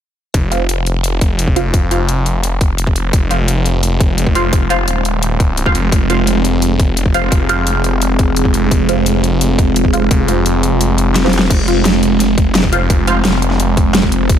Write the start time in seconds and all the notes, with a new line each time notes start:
0.34 F1 G#3 C4 F4 C5, kick, closed hi-hat
0.52 F4 C5 F5, closed hi-hat
0.69 closed hi-hat
0.87 closed hi-hat
1.04 closed hi-hat
1.21 kick, closed hi-hat
1.39 closed hi-hat
1.48 kick
1.56 F4 C5 F5, closed hi-hat
1.74 F1, kick, closed hi-hat
1.91 F4 C5 F5, closed hi-hat
2.09 closed hi-hat
2.26 closed hi-hat
2.43 closed hi-hat
2.61 kick, closed hi-hat
2.78 closed hi-hat
2.87 kick
2.96 closed hi-hat
3.13 F1, kick, closed hi-hat
3.31 F4 C5 F5, closed hi-hat
3.48 closed hi-hat
3.66 closed hi-hat
3.83 closed hi-hat
4.00 kick, closed hi-hat
4.18 closed hi-hat
4.27 kick
4.35 F4 C5 F5, closed hi-hat
4.53 F1, kick, closed hi-hat
4.70 F4 C5 F5, closed hi-hat
4.88 D#1, closed hi-hat
5.05 closed hi-hat
5.23 closed hi-hat
5.40 kick, closed hi-hat
5.57 closed hi-hat
5.66 F4 C5 F5, kick
5.75 F1, closed hi-hat
5.92 F1 G#4, kick, closed hi-hat
6.10 F4 C5 F5, closed hi-hat
6.27 closed hi-hat
6.45 closed hi-hat
6.62 closed hi-hat
6.80 kick, closed hi-hat
6.97 closed hi-hat
7.06 kick
7.14 F4 C5 F5, closed hi-hat
7.32 F1, kick, closed hi-hat
7.49 F4 C5 F5, closed hi-hat
7.67 closed hi-hat
7.84 closed hi-hat
8.02 closed hi-hat
8.19 kick, closed hi-hat
8.36 closed hi-hat
8.45 kick
8.54 closed hi-hat
8.71 F1, kick, closed hi-hat
8.89 F4 C5 F5, closed hi-hat
9.06 closed hi-hat
9.24 closed hi-hat
9.41 closed hi-hat
9.59 kick, closed hi-hat
9.76 closed hi-hat
9.85 kick
9.93 F4 C5 F5, closed hi-hat
10.11 F1, kick, closed hi-hat
10.28 F4 C5 F5, closed hi-hat
10.46 closed hi-hat
10.63 closed hi-hat
10.81 closed hi-hat
10.98 closed hi-hat
11.16 snare, closed hi-hat
11.24 F4 C5 F5, snare
11.33 closed hi-hat
11.39 snare
11.50 F1 C5, kick, closed hi-hat, crash
11.68 F4 C5 F5, closed hi-hat
11.85 snare, closed hi-hat
12.03 closed hi-hat
12.20 snare, closed hi-hat
12.38 kick, closed hi-hat
12.55 snare, closed hi-hat
12.64 kick
12.72 F4 C5 F5, closed hi-hat
12.90 F1, kick, closed hi-hat
13.07 F4 C5 F5, closed hi-hat
13.25 snare, closed hi-hat
13.42 closed hi-hat
13.51 snare
13.60 closed hi-hat
13.77 kick, closed hi-hat
13.95 snare, closed hi-hat
14.03 kick
14.12 closed hi-hat
14.29 F1, kick, closed hi-hat